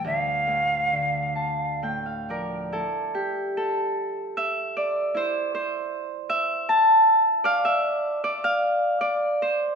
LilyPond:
<<
  \new Staff \with { instrumentName = "Tin whistle" } { \time 3/4 \key d \minor \tempo 4 = 75 f''2 r4 | r2. | r2. | r2. | }
  \new Staff \with { instrumentName = "Harp" } { \time 3/4 \key d \minor r4. a''8 g''16 f''16 <bes' d''>8 | a'8 g'8 a'4 e''8 d''8 | c''8 c''4 e''8 a''8. r16 | f''16 e''8. d''16 f''8. d''8 c''8 | }
  \new Staff \with { instrumentName = "Harp" } { \clef bass \time 3/4 \key d \minor d,8 a,8 d4 a,8 f8 | e'4. r4. | e'4. r4. | d''4. r4. | }
>>